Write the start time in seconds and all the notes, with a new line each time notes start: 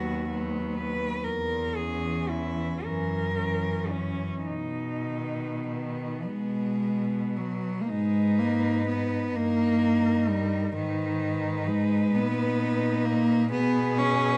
Already playing: D#2 F#3 B3 F#4
0.30 F#3 B3
0.76 B4
1.24 E2 A#4
1.76 E3 C#4 G#4
2.30 E4
2.84 F#2 E3 C#4 A#4
3.37 E3 C#4
3.91 C#4
4.46 B2 D#4
5.07 D#3 B3
5.68 D#3
6.28 B2 G#3
6.84 B3
7.36 F#3
7.82 A#3
7.88 G#2 G#3 D#4 B4
8.39 A#3
8.87 B3
9.34 G2 A#3 D#4 A#4
10.29 G3
10.75 G#2 D#3 D#4 B4
11.67 G#3
12.13 A#2 B3 D#4
13.05 A#3
13.52 B2 B3 G#4 B4
13.98 C#4